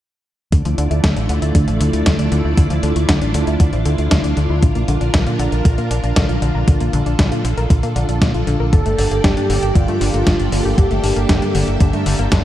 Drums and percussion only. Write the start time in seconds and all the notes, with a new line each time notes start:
0.52 kick, closed hi-hat
0.65 closed hi-hat
0.78 closed hi-hat
0.91 closed hi-hat
1.04 kick, snare, closed hi-hat
1.17 closed hi-hat
1.29 closed hi-hat
1.42 closed hi-hat
1.55 kick, closed hi-hat
1.68 closed hi-hat
1.81 closed hi-hat
1.93 closed hi-hat
2.06 kick, snare, closed hi-hat
2.19 closed hi-hat
2.32 closed hi-hat
2.57 kick, closed hi-hat
2.70 closed hi-hat
2.83 closed hi-hat
2.96 closed hi-hat
3.09 kick, snare, closed hi-hat
3.22 closed hi-hat
3.34 closed hi-hat
3.47 closed hi-hat
3.60 kick, closed hi-hat
3.73 closed hi-hat
3.86 closed hi-hat
3.98 closed hi-hat
4.11 kick, snare, closed hi-hat
4.24 closed hi-hat
4.37 closed hi-hat
4.62 kick, closed hi-hat
4.75 closed hi-hat
4.88 closed hi-hat
5.01 closed hi-hat
5.14 kick, snare, closed hi-hat
5.27 closed hi-hat
5.39 closed hi-hat
5.52 closed hi-hat
5.65 kick, closed hi-hat
5.78 closed hi-hat
5.91 closed hi-hat
6.04 closed hi-hat
6.16 kick, snare, closed hi-hat
6.29 closed hi-hat
6.42 closed hi-hat
6.68 kick, closed hi-hat
6.80 closed hi-hat
6.93 closed hi-hat
7.06 closed hi-hat
7.19 kick, snare, closed hi-hat
7.32 closed hi-hat
7.45 closed hi-hat
7.58 closed hi-hat
7.70 kick, closed hi-hat
7.83 closed hi-hat
7.96 closed hi-hat
8.09 closed hi-hat
8.22 kick, snare, closed hi-hat
8.34 closed hi-hat
8.47 closed hi-hat
8.73 kick, closed hi-hat
8.86 closed hi-hat
8.99 open hi-hat
9.11 closed hi-hat
9.24 kick, snare, closed hi-hat
9.37 closed hi-hat
9.50 open hi-hat
9.63 closed hi-hat
9.75 kick, closed hi-hat
9.88 closed hi-hat
10.01 open hi-hat
10.14 closed hi-hat
10.27 kick, snare, closed hi-hat
10.40 closed hi-hat
10.52 open hi-hat
10.78 kick, closed hi-hat
10.91 closed hi-hat
11.04 open hi-hat
11.16 closed hi-hat
11.29 kick, snare, closed hi-hat
11.42 closed hi-hat
11.55 open hi-hat
11.68 closed hi-hat
11.80 kick, closed hi-hat
11.93 closed hi-hat
12.06 open hi-hat
12.19 closed hi-hat
12.32 kick, snare, closed hi-hat